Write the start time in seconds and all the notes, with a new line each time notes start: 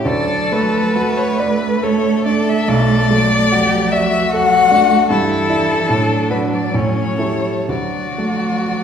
0.05 D2 F#3 A4 D5
0.52 A3 B4
0.94 A3 F#4
1.17 C#5
1.38 B4 D5
1.82 A4 C#5
2.26 D4 D5
2.49 E5
2.68 B1 A3 D5
3.11 F#3 A3
3.52 F#4 G4
3.91 F#4 D5 E5
4.32 F#3 A4 F#5
4.71 A3 D4
5.08 G2 E3 E4 A4
5.49 D4 E4
5.88 A2 F#3 D4
6.30 D4 F#4 B4
6.54 D5
6.74 A2 C#4 C#5
7.17 E4 G4 A4
7.68 D2 F#3 F#4 D5
8.18 A3
8.67 F#4